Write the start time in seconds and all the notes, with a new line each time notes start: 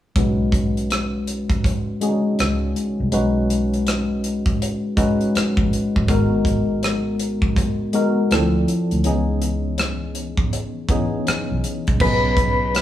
0.16 B1 G#3 C#4 D#4 F#4 B4, kick, closed hi-hat
0.52 kick, closed hi-hat
0.77 closed hi-hat
0.90 cross-stick, closed hi-hat
1.27 closed hi-hat
1.50 kick, closed hi-hat
1.64 kick, closed hi-hat
2.01 G#3 C#4 D4 F#4 G#4, closed hi-hat
2.08 D#4
2.39 C#2, cross-stick, closed hi-hat
2.76 closed hi-hat
3.00 C2
3.12 B1 G#3 C#4 D#4 F#4 B4, closed hi-hat
3.50 closed hi-hat
3.73 closed hi-hat
3.87 cross-stick, closed hi-hat
4.24 closed hi-hat
4.46 kick, closed hi-hat
4.62 closed hi-hat
4.97 G#3 C#4 D#4 F#4 B4, kick, closed hi-hat
5.21 closed hi-hat
5.35 muted fingered electric bass stroke, cross-stick, closed hi-hat
5.57 A#1, kick
5.73 closed hi-hat
5.96 A1, kick
6.08 G#1 G#3 B3 D#4 F#4 A#4, kick, closed hi-hat
6.45 kick, closed hi-hat
6.83 cross-stick, closed hi-hat
7.20 closed hi-hat
7.42 kick
7.56 kick, closed hi-hat
7.93 G#3 B3 D#4 F#4 A#4, closed hi-hat
8.31 D2 E3 C4 D4 E4 A4, cross-stick, closed hi-hat
8.37 F3
8.68 closed hi-hat
8.91 D2, closed hi-hat
9.04 C#2 E3 B3 C#4 D#4 G#4, closed hi-hat
9.42 closed hi-hat
9.78 cross-stick, closed hi-hat
10.15 closed hi-hat
10.37 kick
10.53 closed hi-hat
10.89 E3 B3 C#4 D#4 G#4, kick, closed hi-hat
11.27 muted fingered electric bass stroke, cross-stick, closed hi-hat
11.51 B1
11.64 closed hi-hat
11.87 C2, kick, closed hi-hat
12.00 B1 F#3 B3 C#4 D#4 G#4 B4, kick, crash
12.37 kick, closed hi-hat
12.75 cross-stick, closed hi-hat